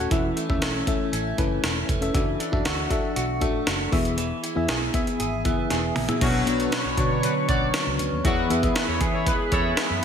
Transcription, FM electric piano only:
0.00 0.11 C#4 medium
0.00 0.14 F#4 medium
0.00 0.11 A4 medium
0.00 0.13 F#5 medium
0.11 0.83 E3 medium
0.11 0.46 C#4 medium
0.11 0.46 E4 medium
0.11 0.46 A4 medium
0.11 0.46 E5 medium
0.49 0.84 C#4 medium
0.49 0.84 E4 medium
0.49 0.84 A4 medium
0.49 0.84 E5 medium
0.87 1.34 C#4 medium
0.87 1.34 E4 medium
0.87 1.34 A4 medium
0.87 1.34 E5 medium
1.38 1.96 C#4 medium
1.38 1.96 E4 medium
1.38 1.96 A4 medium
1.38 1.97 B4 medium
2.01 2.13 C#4 medium
2.01 2.13 E4 medium
2.01 2.13 A4 medium
2.01 2.14 E5 medium
2.14 2.49 D4 medium
2.14 2.49 F#4 medium
2.14 2.49 A4 medium
2.14 2.50 E5 medium
2.52 2.87 D4 medium
2.52 2.87 F#4 medium
2.52 2.87 A4 medium
2.52 2.88 E5 medium
2.90 3.37 D4 medium
2.90 3.37 F#4 medium
2.90 3.37 A4 medium
2.90 3.37 E5 medium
3.41 3.92 D4 medium
3.41 3.92 F#4 medium
3.41 3.92 A4 medium
3.41 3.92 E5 medium
3.92 4.65 E3 medium
3.92 4.50 B3 medium
3.92 4.50 E4 medium
3.92 4.51 G#4 medium
3.92 4.51 E5 medium
4.55 4.91 B3 medium
4.55 4.91 E4 medium
4.55 4.91 G#4 medium
4.55 4.91 E5 medium
4.94 5.40 B3 medium
4.94 5.40 E4 medium
4.94 5.41 G#4 medium
4.94 5.41 E5 medium
5.45 6.03 B3 medium
5.45 6.03 E4 medium
5.45 6.03 G#4 medium
5.45 6.03 E5 medium
6.08 6.20 B3 medium
6.08 6.20 E4 medium
6.08 6.20 G#4 medium
6.08 6.21 E5 medium
6.21 6.94 B2 medium
6.21 6.44 B3 medium
6.21 6.45 D4 medium
6.21 6.45 F#4 medium
6.21 6.45 C#5 medium
6.46 6.93 B3 medium
6.46 6.93 D4 medium
6.46 6.93 F#4 medium
6.46 6.94 C#5 medium
6.97 7.90 D3 medium
6.97 7.90 B3 medium
6.97 7.91 F#4 medium
6.97 7.91 C#5 medium
8.24 8.97 E3 medium
8.24 8.48 B3 medium
8.24 8.48 E4 medium
8.24 8.48 G#4 medium
8.24 8.48 E5 medium
8.50 8.61 B3 medium
8.50 8.62 E4 medium
8.50 8.62 G#4 medium
8.50 8.62 E5 medium
8.62 9.55 B3 medium
8.62 9.56 E4 medium
8.62 9.56 G#4 medium
8.62 9.56 E5 medium
9.77 10.01 B5 medium

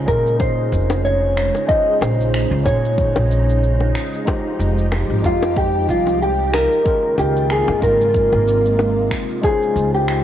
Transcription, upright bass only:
0.08 0.68 A#2 medium
0.72 1.49 F1 loud
2.01 2.46 A#1 medium
2.51 2.63 C#2 medium
2.66 3.10 A#2 loud
3.16 3.90 A#1 loud
4.59 5.04 F1 loud
5.10 5.21 G#1 medium
5.24 5.84 F2 medium
5.89 6.65 C2 medium
7.18 7.62 C#2 medium
7.68 7.80 F2 medium
7.82 8.27 G#2 medium
8.32 9.07 G#1 loud
9.76 10.20 C#2 medium

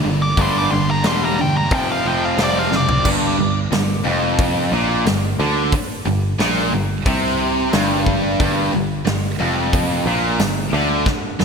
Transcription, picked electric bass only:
0.06 0.35 G1 medium
0.37 0.67 G1 loud
0.72 1.01 G1 loud
1.05 1.71 E1 loud
1.71 2.01 F1 loud
2.05 2.35 F1 medium
2.38 2.68 F1 loud
2.72 3.02 F#1 medium
3.05 3.36 G1 loud
3.39 3.70 G1 medium
3.72 4.03 G1 medium
4.05 4.68 F1 loud
4.72 5.03 A#1 medium
5.06 5.37 G1 medium
5.40 5.70 D2 loud
5.73 muted picked electric bass stroke soft
6.05 6.37 G1 medium
6.39 6.70 A#1 loud
6.73 7.04 G1 medium
7.06 7.69 C2 loud
7.74 8.36 G1 medium
8.40 8.71 G1 medium
8.75 9.05 G1 medium
9.07 9.38 G1 medium
9.41 10.03 F1 medium
10.06 10.37 A#1 loud
10.39 10.71 G1 medium
10.73 11.04 D2 loud
11.06 muted picked electric bass stroke soft
11.41 11.45 G1 medium

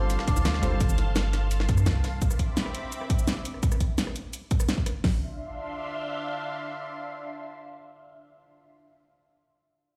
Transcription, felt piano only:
0.00 0.62 G3 medium
0.00 0.62 C4 medium
0.00 0.63 D4 medium
0.00 0.63 F4 medium
0.00 0.64 C5 medium
0.62 0.78 G3 loud
0.62 0.78 C4 medium
0.62 0.78 D4 medium
0.62 0.79 F4 medium
0.62 0.79 C5 loud

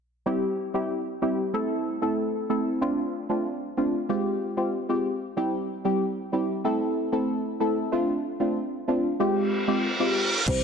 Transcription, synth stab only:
0.26 0.44 G3 medium
0.26 0.44 C4 medium
0.26 0.44 E4 medium
0.26 0.45 G4 loud
0.74 0.92 G3 medium
0.74 0.92 C4 medium
0.74 0.92 E4 medium
0.74 0.92 G4 medium
1.22 1.40 G3 medium
1.22 1.40 C4 medium
1.22 1.40 E4 medium
1.22 1.40 G4 medium
1.53 1.98 A3 medium
1.53 1.98 C4 medium
1.53 1.98 E4 medium
1.53 1.98 A4 loud
2.02 2.46 A3 medium
2.02 2.46 C4 medium
2.02 2.46 E4 medium
2.02 2.46 A4 medium
2.49 2.79 A3 medium
2.49 2.79 C4 medium
2.49 2.79 E4 medium
2.49 2.79 A4 medium
2.81 3.00 A3 medium
2.81 3.00 C4 medium
2.81 3.00 D4 medium
2.81 3.00 F4 loud
3.29 3.47 A3 medium
3.29 3.48 C4 medium
3.29 3.48 D4 medium
3.29 3.48 F4 medium
3.77 3.95 A3 medium
3.77 3.95 C4 medium
3.77 3.96 D4 medium
3.77 3.96 F4 medium
4.09 4.53 G#3 medium
4.09 4.53 C4 medium
4.09 4.53 F4 medium
4.09 4.54 G4 loud
4.57 4.75 G#3 medium
4.57 4.75 C4 medium
4.57 4.75 F4 medium
4.57 4.75 G4 medium
4.89 5.07 G#3 medium
4.89 5.07 C4 medium
4.89 5.07 F4 medium
4.89 5.07 G4 medium
5.37 5.55 G3 loud
5.37 5.55 C4 medium
5.37 5.55 E4 medium
5.37 5.55 G4 loud
5.84 6.03 G3 medium
5.84 6.03 C4 medium
5.84 6.03 E4 medium
5.84 6.03 G4 medium
6.32 6.51 G3 medium
6.32 6.51 C4 medium
6.32 6.51 E4 medium
6.32 6.51 G4 medium
6.64 7.08 A3 medium
6.64 7.09 C4 medium
6.64 7.09 E4 medium
6.64 7.09 A4 loud
7.12 7.56 A3 medium
7.12 7.56 C4 medium
7.12 7.57 E4 medium
7.12 7.57 A4 medium
7.60 7.90 A3 medium
7.60 7.90 C4 medium
7.60 7.90 E4 medium
7.60 7.90 A4 medium
7.92 8.10 A3 medium
7.92 8.10 C4 medium
7.92 8.10 D4 medium
7.92 8.10 F4 loud
8.40 8.58 A3 medium
8.40 8.58 C4 medium
8.40 8.58 D4 medium
8.40 8.58 F4 medium
8.88 9.06 A3 medium
8.88 9.06 C4 medium
8.88 9.06 D4 medium
8.88 9.06 F4 medium
9.20 9.64 G#3 medium
9.20 9.64 C4 medium
9.20 9.64 F4 medium
9.20 9.64 G4 loud
9.67 9.86 G#3 medium
9.67 9.86 C4 medium
9.67 9.86 F4 medium
9.67 9.86 G4 medium
9.99 10.18 G#3 medium
9.99 10.18 C4 medium
9.99 10.18 F4 medium
9.99 10.18 G4 medium
10.47 10.64 G3 loud
10.47 10.64 C4 medium
10.47 10.64 E4 medium
10.47 10.64 G4 loud

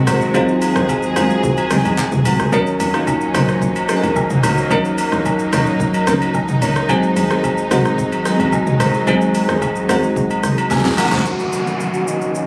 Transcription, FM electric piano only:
0.00 0.34 F#3 loud
0.00 0.34 G#3 loud
0.00 0.35 C4 loud
0.00 0.35 D#4 loud
0.00 2.26 F#4 loud
0.00 1.78 G#4 loud
0.00 2.54 A#4 loud
0.34 1.00 F#3 loud
0.34 1.00 G#3 loud
0.34 1.00 C4 loud
0.34 1.01 D#4 loud
0.34 1.01 F4 loud
1.16 1.60 F#3 medium
1.16 1.60 G#3 medium
1.16 1.60 C4 medium
1.16 1.61 D#4 medium
1.16 1.61 F4 loud
1.70 2.15 F#3 medium
1.70 2.15 G#3 medium
1.70 2.15 C4 medium
1.70 2.15 D#4 medium
1.70 1.78 G4 medium
1.78 2.19 G#4 medium
2.25 2.47 F#3 medium
2.25 2.47 G#3 medium
2.25 2.48 C4 medium
2.25 2.48 D#4 medium
2.25 2.48 F#4 medium
2.52 2.85 F#3 loud
2.52 2.86 A#3 loud
2.52 2.86 C#4 loud
2.52 2.86 D#4 loud
2.52 2.86 A#4 loud
2.94 3.26 F#3 medium
2.94 3.27 A#3 medium
2.94 3.27 C#4 medium
2.94 3.27 D#4 medium
2.94 3.27 F4 medium
3.34 3.78 F#3 medium
3.34 3.78 A#3 medium
3.34 3.79 C#4 medium
3.34 3.79 D#4 medium
3.34 3.79 C5 loud
3.89 4.55 F#3 medium
3.89 4.55 A#3 medium
3.89 4.55 C#4 medium
3.89 4.55 D#4 medium
3.89 3.96 G#4 medium
3.96 4.59 A#4 loud
4.70 5.36 F#3 loud
4.70 5.37 A#3 loud
4.70 5.37 C#4 loud
4.70 5.37 D#4 loud
4.70 5.37 A#4 loud
5.52 5.96 F#3 medium
5.52 5.97 A#3 medium
5.52 5.97 C#4 medium
5.52 5.97 D#4 medium
5.52 5.97 C#5 loud
6.07 6.14 F3 medium
6.07 6.51 A#3 medium
6.07 6.51 C#4 medium
6.07 6.52 D#4 medium
6.07 6.52 A#4 loud
6.13 6.54 F#3 medium
6.61 6.84 F#3 medium
6.61 6.84 A#3 medium
6.61 6.84 C#4 medium
6.61 6.84 D#4 medium
6.61 6.84 C#5 medium
6.89 7.22 F#3 loud
6.89 7.22 G#3 loud
6.89 7.22 C4 loud
6.89 7.22 D#4 loud
6.89 7.22 G#4 loud
7.30 7.63 F#3 medium
7.30 7.63 G#3 medium
7.30 7.63 C4 medium
7.30 7.63 D#4 medium
7.30 7.63 G#4 medium
7.70 8.15 F#3 medium
7.70 8.15 G#3 medium
7.70 8.15 C4 medium
7.70 8.15 D#4 medium
7.70 8.15 F#4 loud
8.25 8.91 F#3 medium
8.25 8.91 G#3 medium
8.25 8.32 B3 medium
8.25 8.92 D#4 medium
8.25 8.92 G#4 loud
8.32 8.95 C4 medium
9.07 9.73 F#3 loud
9.07 9.73 G#3 loud
9.07 9.73 C4 loud
9.07 9.73 D#4 loud
9.07 9.74 G#4 loud
9.89 10.33 F#3 medium
9.89 10.33 G#3 medium
9.89 10.33 C4 medium
9.89 10.33 D#4 medium
9.89 10.34 F#4 loud
10.71 10.97 C4 medium
10.71 10.97 G#4 medium
10.71 10.96 G#5 medium
10.99 11.12 A#4 medium
10.99 11.24 F#5 medium
11.13 11.39 D#4 medium
11.13 11.39 C5 medium
11.25 12.47 D#3 medium
11.25 12.47 F#3 medium
11.25 12.47 A#3 medium
11.25 12.47 C#4 medium
11.25 12.47 F#4 medium

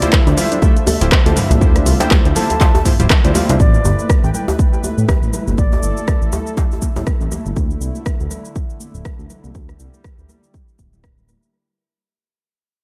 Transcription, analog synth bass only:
0.27 0.33 D2 medium
1.01 1.08 D1 medium
1.26 1.33 D2 medium
1.51 1.57 C2 loud
1.61 1.78 D2 loud
1.86 1.95 C2 medium
2.25 2.32 D2 medium
2.99 3.06 D1 medium
3.24 3.31 D2 medium
3.49 3.56 C2 medium
3.60 3.77 A1 loud
3.85 3.93 G1 medium
4.24 4.30 A1 medium
4.98 5.04 A2 medium
5.22 5.29 A1 medium
5.48 5.54 G1 medium
5.58 5.75 A1 loud
5.83 5.92 G1 medium
6.22 6.28 A1 medium
6.96 7.03 A2 medium
7.21 7.28 A1 medium
7.46 7.52 G1 medium
7.57 7.73 D2 medium
7.81 7.90 C2 medium
8.20 8.27 D2 medium
8.95 9.01 D1 medium
9.19 9.26 D2 medium
9.44 9.51 C2 medium
9.55 9.72 D2 medium
9.80 9.88 C2 medium
10.19 10.25 D2 medium
10.79 11.34 D1 medium

